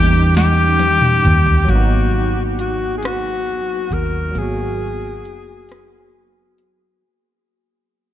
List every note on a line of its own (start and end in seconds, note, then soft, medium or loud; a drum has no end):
0.00 1.20 E2 loud
0.00 1.62 E3 medium
0.00 1.64 G3 medium
0.00 1.66 A#3 medium
0.00 1.68 D#4 medium
0.00 0.32 G4 loud
0.35 1.71 G4 loud
0.35 snare medium
0.35 closed hi-hat medium
0.79 closed hi-hat medium
0.79 high tom medium
1.01 mid tom medium
1.25 1.66 D#2 medium
1.25 closed hi-hat soft
1.25 mid tom medium
1.46 floor tom loud
1.64 4.29 F#3 medium
1.64 4.31 A#3 soft
1.69 3.87 G#1 medium
1.69 4.33 B3 medium
1.69 2.43 F#4 medium
1.69 kick loud
1.69 closed hi-hat medium
1.69 crash medium
1.75 4.34 D#4 medium
2.59 2.94 F#4 medium
2.59 closed hi-hat medium
2.98 3.07 G#4 medium
3.02 3.95 F#4 medium
3.02 cross-stick loud
3.02 closed hi-hat medium
3.91 4.32 D#2 medium
3.91 4.40 A#4 medium
3.91 kick medium
3.91 closed hi-hat medium
4.31 6.96 F#3 medium
4.31 6.97 A#3 medium
4.35 5.26 G#1 medium
4.35 6.99 B3 soft
4.35 6.14 G#4 medium
4.35 kick medium
4.35 closed hi-hat medium
4.42 7.01 F#4 medium
5.25 6.98 F#1 medium
5.25 closed hi-hat medium
5.69 cross-stick medium
5.69 closed hi-hat medium
6.58 closed hi-hat medium